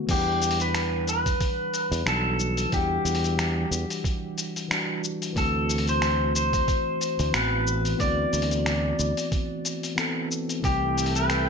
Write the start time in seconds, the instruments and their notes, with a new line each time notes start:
Already playing: tine electric piano D3 A3 B3 F#4
0.06 fretless electric bass E2, tine electric piano E3 G3, kick, open hi-hat, crash, shaker
0.10 tine electric piano D4 F#5, pedal steel guitar G4
0.42 open hi-hat, shaker
0.51 open hi-hat
0.60 pedal steel guitar B4, open hi-hat, shaker
0.75 finger snap, open hi-hat, shaker
1.07 pedal steel guitar B4, open hi-hat, shaker
1.26 kick, open hi-hat, shaker
1.41 kick, open hi-hat, shaker
1.74 open hi-hat, shaker
1.92 fretless electric bass E2, open hi-hat, shaker
2.04 fretless electric bass B1, tine electric piano E3 G3 D4 F#4, pedal steel guitar A4, finger snap, open hi-hat, shaker
2.40 shaker
2.57 open hi-hat, shaker
2.69 fretless electric bass E2, tine electric piano E3 G3, kick, open hi-hat
2.73 tine electric piano D4 F#5, pedal steel guitar G4, shaker
3.05 fretless electric bass E2, open hi-hat, shaker
3.15 open hi-hat
3.24 open hi-hat, shaker
3.39 finger snap, open hi-hat, shaker
3.71 fretless electric bass E2, open hi-hat, shaker
3.90 open hi-hat, shaker
4.04 kick, open hi-hat, shaker
4.38 open hi-hat, shaker
4.56 open hi-hat, shaker
4.69 tine electric piano E3 G3 D4 F#4, finger snap, open hi-hat, shaker
5.04 shaker
5.22 open hi-hat, shaker
5.33 fretless electric bass D2, tine electric piano E3 A3, kick, open hi-hat
5.37 tine electric piano C4 F#4, pedal steel guitar A4, shaker
5.69 open hi-hat, shaker
5.78 open hi-hat
5.88 pedal steel guitar C5, open hi-hat, shaker
6.02 finger snap, open hi-hat, shaker
6.35 pedal steel guitar C5, open hi-hat, shaker
6.53 kick, open hi-hat, shaker
6.68 kick, open hi-hat, shaker
7.01 open hi-hat, shaker
7.19 fretless electric bass D2, open hi-hat, shaker
7.32 fretless electric bass A1, tine electric piano E3 B3 C4 F#4, finger snap, open hi-hat, shaker
7.36 pedal steel guitar B4
7.67 shaker
7.85 open hi-hat, shaker
7.96 fretless electric bass D2, tine electric piano E3 B3, kick
8.00 tine electric piano C4 F#4, pedal steel guitar D5, open hi-hat, shaker
8.33 fretless electric bass D2, open hi-hat, shaker
8.42 open hi-hat
8.51 open hi-hat, shaker
8.66 finger snap, open hi-hat, shaker
8.99 fretless electric bass D2, open hi-hat, shaker
9.17 open hi-hat, shaker
9.32 kick, open hi-hat, shaker
9.65 open hi-hat, shaker
9.83 open hi-hat, shaker
9.96 tine electric piano E3 B3 C4 A4, finger snap, open hi-hat, shaker
10.32 shaker
10.49 open hi-hat, shaker
10.60 tine electric piano E3 A3, analog synth pad A4 E5
10.64 fretless electric bass C2, tine electric piano C4 G4, pedal steel guitar G4, analog synth pad G5, kick, open hi-hat, shaker
10.98 open hi-hat, shaker
11.06 open hi-hat
11.15 pedal steel guitar B4, open hi-hat, shaker
11.30 finger snap, open hi-hat, shaker